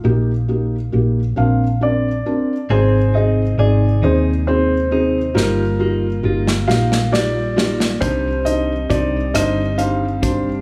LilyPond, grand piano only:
\new Staff \with { instrumentName = "Grand piano" } { \time 6/8 \key ees \major \tempo 4. = 45 f''4. f''8 d''4 | c''8 ees''8 d''8 c''8 c''4 | bes'4. f''8 d''4 | c''8 ees''8 d''8 ees''8 f''4 | }